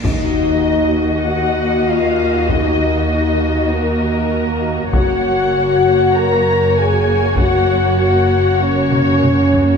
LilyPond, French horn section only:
\new Staff \with { instrumentName = "French horn section" } { \time 4/4 \key ees \minor \tempo 4 = 98 ees'2 ges'4 f'4 | ees'4 ees'4 bes2 | ges'2 bes'4 aes'4 | ges'4 ges'4 des'2 | }